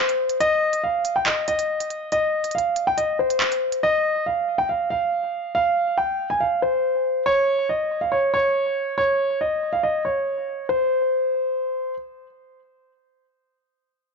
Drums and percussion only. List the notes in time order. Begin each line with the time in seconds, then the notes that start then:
0.09 closed hi-hat
0.29 closed hi-hat
0.41 closed hi-hat
0.73 closed hi-hat
1.05 closed hi-hat
1.26 clap
1.48 closed hi-hat
1.59 closed hi-hat
1.80 closed hi-hat
1.90 closed hi-hat
2.12 closed hi-hat
2.44 closed hi-hat
2.51 closed hi-hat
2.58 closed hi-hat
2.76 closed hi-hat
2.98 closed hi-hat
3.30 closed hi-hat
3.40 clap
3.52 closed hi-hat
3.72 closed hi-hat